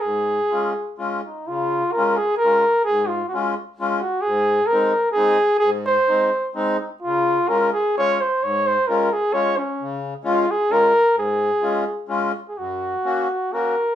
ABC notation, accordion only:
X:1
M:3/4
L:1/8
Q:1/4=129
K:Db
V:1 name="Accordion"
A,,2 [A,DF] z [A,DF] z | D,2 [A,DF] z [A,DF] z | A,,2 [A,DF] z [A,DF] z | A,,2 [A,CE] z [A,CE] z |
A,,2 [A,CE] z [A,CE] z | D,2 [A,DF] z [A,DF] z | A,,2 [A,DF] z [A,DF] z | D,2 [A,DF] z [A,DF] z |
A,,2 [A,DF] z [A,DF] z | [K:F#] F,,2 [A,CF] z [A,CF] z |]